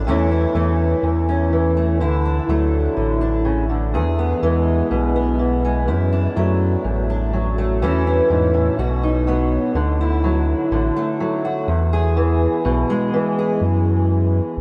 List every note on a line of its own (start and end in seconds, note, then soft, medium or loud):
0.07 0.47 E2 medium
0.07 1.02 E2 medium
0.07 0.54 E3 medium
0.07 0.55 A3 medium
0.07 0.30 C#4 medium
0.07 2.01 E4 medium
0.31 1.27 C#4 soft
0.54 0.95 E2 loud
0.54 1.52 E3 medium
0.54 1.76 A3 soft
1.03 2.02 E2 medium
1.03 2.00 E2 medium
1.29 1.98 C#4 soft
1.53 2.48 E3 medium
1.77 1.98 A3 soft
2.00 2.41 D2 medium
2.00 2.95 D3 medium
2.00 3.94 E4 medium
2.25 3.20 D4 soft
2.48 2.89 D2 loud
2.48 3.91 F#3 medium
2.48 3.92 A3 soft
2.97 3.96 A1 medium
2.97 3.44 D3 medium
3.21 3.91 D4 medium
3.45 3.69 C#3 medium
3.69 3.94 D3 medium
3.94 5.87 E2 medium
3.94 4.34 E2 medium
3.94 5.85 G#4 medium
4.19 5.15 B3 soft
4.42 4.83 E2 loud
4.42 5.39 E3 medium
4.42 5.63 G#3 soft
4.91 5.89 B1 medium
4.91 5.39 B2 medium
5.16 5.88 B3 medium
5.39 6.36 E3 medium
5.65 5.88 G#3 soft
5.88 6.83 F#2 medium
5.88 6.28 F#2 medium
5.88 7.82 E4 medium
6.13 7.09 D4 medium
6.36 6.77 F#2 loud
6.36 7.32 F#3 medium
6.36 7.57 A3 medium
6.84 7.83 A1 medium
6.84 7.79 F#2 medium
7.10 7.79 D4 soft
7.33 7.79 F#3 medium
7.58 7.79 A3 medium
7.81 8.22 E2 medium
7.81 8.30 E2 medium
7.81 8.79 E3 medium
7.81 8.76 A3 medium
7.81 8.06 C#4 medium
7.81 8.79 E4 medium
8.07 8.76 C#4 medium
8.30 8.70 E2 medium
8.30 8.54 G#2 medium
8.54 8.78 A2 medium
8.78 9.58 B1 medium
8.78 9.75 B2 medium
8.78 9.73 F#4 medium
9.03 9.73 D#4 medium
9.27 9.72 F#3 medium
9.27 9.73 B3 medium
9.75 10.55 D2 loud
9.75 10.71 D3 medium
10.01 11.44 E4 medium
10.24 11.19 F#3 medium
10.71 10.91 A1 loud
10.71 11.65 D3 medium
10.96 11.66 A3 medium
11.20 11.65 F#3 medium
11.45 11.66 F#4 medium
11.68 12.48 E2 loud
11.68 13.61 E2 medium
11.93 13.37 G#4 medium
12.17 13.12 E3 medium
12.65 12.85 B1 medium
12.65 13.13 B2 medium
12.90 13.62 G#3 medium
13.14 14.61 E3 medium
13.39 13.59 G#4 medium
13.61 14.41 F#2 loud
14.57 14.61 A1 loud